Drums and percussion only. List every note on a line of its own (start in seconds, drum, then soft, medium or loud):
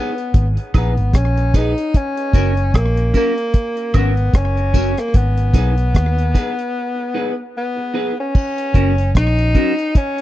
0.18 closed hi-hat soft
0.34 kick loud
0.34 closed hi-hat medium
0.57 closed hi-hat medium
0.74 kick loud
0.74 closed hi-hat medium
0.74 tambourine medium
0.74 high woodblock medium
0.97 closed hi-hat soft
1.14 kick loud
1.14 cross-stick loud
1.14 closed hi-hat loud
1.38 closed hi-hat soft
1.54 kick medium
1.54 closed hi-hat medium
1.54 tambourine medium
1.78 closed hi-hat medium
1.94 kick loud
1.94 closed hi-hat medium
2.17 closed hi-hat medium
2.33 kick loud
2.33 closed hi-hat medium
2.33 tambourine medium
2.57 closed hi-hat medium
2.74 kick medium
2.74 cross-stick loud
2.74 closed hi-hat medium
2.74 high woodblock medium
2.97 closed hi-hat medium
3.14 kick medium
3.14 closed hi-hat medium
3.14 tambourine medium
3.38 closed hi-hat soft
3.54 kick loud
3.54 closed hi-hat medium
3.77 closed hi-hat soft
3.94 kick medium
3.94 closed hi-hat medium
3.94 tambourine medium
3.94 high woodblock medium
4.17 closed hi-hat soft
4.34 kick loud
4.34 cross-stick loud
4.34 closed hi-hat loud
4.57 closed hi-hat soft
4.74 kick medium
4.74 closed hi-hat medium
4.74 tambourine medium
4.98 cross-stick medium
4.98 closed hi-hat medium
5.14 kick loud
5.14 closed hi-hat medium
5.38 closed hi-hat medium
5.54 kick medium
5.54 closed hi-hat medium
5.54 tambourine medium
5.78 closed hi-hat medium
5.95 kick loud
5.95 cross-stick medium
5.95 closed hi-hat medium
6.18 closed hi-hat medium
6.35 kick medium
6.35 closed hi-hat medium
6.35 tambourine medium
6.59 closed hi-hat soft
8.35 kick loud
8.35 crash loud
8.58 closed hi-hat medium
8.74 kick medium
8.74 closed hi-hat medium
8.98 closed hi-hat medium
9.15 kick medium
9.15 cross-stick loud
9.15 closed hi-hat medium
9.39 closed hi-hat medium
9.55 kick medium
9.55 closed hi-hat medium
9.79 closed hi-hat soft
9.95 kick loud
9.95 closed hi-hat medium
10.18 closed hi-hat medium